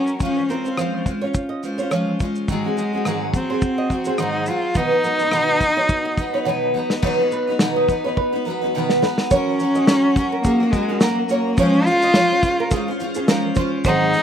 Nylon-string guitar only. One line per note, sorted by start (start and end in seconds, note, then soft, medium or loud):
0.50 0.64 A#4 medium
0.77 0.92 C5 medium
1.21 1.34 C#5 medium
1.49 1.62 D#5 medium
1.78 1.90 C#5 medium
1.91 2.33 C#5 medium
2.77 2.92 G#4 medium
3.06 3.21 A#4 medium
3.50 3.62 C5 medium
3.78 3.90 D#5 medium
4.06 4.18 C5 medium
4.19 4.61 C5 medium
5.04 5.19 A#4 medium
5.33 5.48 B4 medium
5.77 5.89 C#5 medium
6.05 6.18 D#5 medium
6.34 6.45 C#5 medium
6.47 6.88 C#5 medium
7.04 7.31 C#5 medium
7.32 7.59 B4 medium
7.76 7.88 D#5 medium
8.04 8.17 C#5 medium
8.17 8.45 B4 medium
8.45 8.60 A#4 medium
9.02 9.17 B4 medium
9.31 9.58 C#5 loud
9.75 9.88 D#5 medium
9.88 10.03 C#5 medium
10.32 10.44 A#4 medium
10.45 10.60 G#4 medium
10.90 11.01 G#4 medium
11.02 11.17 A#4 medium
11.31 11.45 C#5 medium
11.59 11.85 C#5 loud
12.03 12.15 D#5 medium
12.15 12.30 C#5 medium
12.60 12.71 A#4 medium
12.72 12.86 G#4 medium
13.16 13.28 G#4 medium
13.29 13.43 A#4 medium
13.56 13.71 C5 medium
13.86 14.12 C5 loud